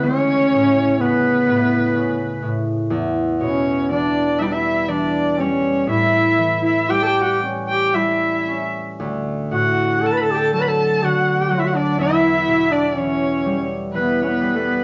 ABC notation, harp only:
X:1
M:3/4
L:1/8
Q:1/4=61
K:Amix
V:1 name="Harp" clef=bass
C,, A,, C, A,, C, A,, | E,, B,, E, G, E, G, | A,, E, G, C G, C | D,, A,, D, F, D, F, |
E,, B,, E, G, E, G, |]